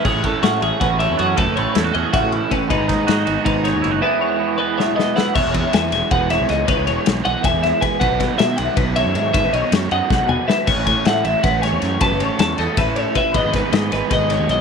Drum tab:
CC |x------|-------|-------|-------|
RD |-xxxxxx|xxxxxxx|xxxxxxx|-------|
SD |--o-o--|--o-o--|-oo--o-|----ooo|
T2 |-------|-------|-------|-------|
BD |oo--o--|o---o-o|oo--o--|-------|

CC |x------|-------|-------|-------|
RD |-xxxxxx|xxxxxxx|xxxxxxx|xxxx---|
SD |--oo-oo|--o-oo-|-oo----|--o-o-o|
T2 |-------|-------|-------|-----o-|
BD |oo--o--|o---o-o|oo--o--|o---o--|

CC |x------|-------|-------|
RD |xxxxxxx|xxxxxxx|xxxxxxx|
SD |--o-ooo|--ooo--|-ooooo-|
T2 |-------|-------|-------|
BD |oo--o--|o---o-o|oo--o--|